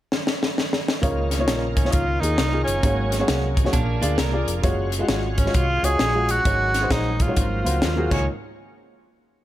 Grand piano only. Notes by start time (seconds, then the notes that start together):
1.02 C#3 A#3 D#4 F4 C#5
1.39 A#3 D#4 F4 C#5
1.84 A#3 D#4 F4 C#5
2.21 A#3 D#4 F4 G#4
2.52 A#3 D#4 F4 G#4
2.83 G#2 A#3 F#4 G#4 C#5
3.19 A#3 F#4 G#4 C#5
3.64 A#3 F#4 G#4 C#5
3.73 A#2
4.01 A#3 F4 G#4 D5
4.32 A#3 F4 G#4 D5
4.62 G#3 F4 F#4 C#5
4.99 G#3 F4 F#4 G#4
5.45 G#3 F4 F#4 C#5
5.83 G#3 F4 F#4 C#5
6.14 G#3 F4 F#4 G#4
6.45 G#2 G#3 D#4 F#4 C#5
6.81 G#3 D#4 F#4 C5
7.27 G#3 D#4 F#4 C#5
7.36 G#2
7.64 A#3 F4 F#4 C5
7.96 A#3 F4 F#4 G#4
8.11 C#2 A#3 D#4 F4 C#5